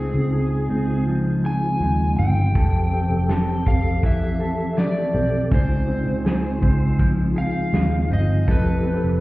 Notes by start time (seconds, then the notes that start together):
Already playing: C#2 C#3 G#3 C4 D#4 F4 G#4
0.14 C#2
0.33 G#4
0.70 C#2 C4
1.07 F3
1.44 G#4 G#5
1.81 D#2 G#3
2.18 G1 C4 G5
2.55 F1 F2 E3 G4 A4, kick, closed hi-hat
2.92 C4
3.10 F1
3.29 A4, snare, closed hi-hat
3.66 F1 C4 F5, kick
4.03 E3 E5, kick, closed hi-hat
4.40 A4
4.77 A3 D5, snare, closed hi-hat
5.14 B1 C4
5.51 C#2 C#3 G#3 C4 D#4 F4 G#4 C5, kick, closed hi-hat
5.88 C4
6.07 C#2
6.25 G#4, snare, closed hi-hat
6.62 C#2 C4, kick
6.99 F3, kick, closed hi-hat
7.36 G#4 F5
7.73 D#2 G#3, snare, closed hi-hat
8.10 G1 C4 D#5
8.47 F1 F2 E3 C4 E4 G4 A4 B4, kick, closed hi-hat
8.85 C4
9.04 F1